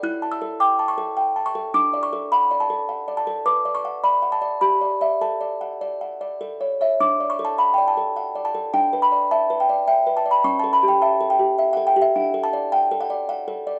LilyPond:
\new Staff \with { instrumentName = "Music box" } { \time 3/4 \key d \major \tempo 4 = 105 << { fis'''8 e'''8 d'''8 cis'''4 cis'''8 | d'''8 cis'''8 b''8 a''4 a''8 | d'''8 cis'''8 b''8 a''8 b''4 | a''2~ a''8 r8 |
d'''8 cis'''16 a''16 b''16 g''16 a''4 a''8 | g''8 b''8 a''8 g''8 g''8 a''16 b''16 | cis'''16 a''16 b''16 g''16 a''8 g''8. fis''16 g''16 e''16 | fis''8 a''8 g''8 fis''8 fis''4 | } \\ { \tuplet 3/2 { e'8 a''8 a'8 g''8 a''8 a'8 g''8 a''8 a'8 } | \tuplet 3/2 { d'8 d''8 a'8 fis''8 d''8 a'8 fis''8 d''8 a'8 } | \tuplet 3/2 { b'8 d''8 fis''8 d''8 fis''8 d''8 g'8 d''8 <d'' e''>8 } | \tuplet 3/2 { a'8 d''8 fis''8 d''8 fis''8 d''8 a'8 cis''8 <cis'' e''>8 } |
\tuplet 3/2 { d'8 d''8 a'8 fis''8 d''8 a'8 fis''8 d''8 a'8 } | \tuplet 3/2 { d'8 b'8 d''8 e''8 b'8 d''8 e''8 b'8 d''8 } | \tuplet 3/2 { cis'8 a'8 g'8 e''8 a'8 g'8 e''8 a'8 g'8 } | \tuplet 3/2 { d'8 a'8 d''8 fis''8 a'8 d''8~ d''8 a'8 d''8 } | } >> }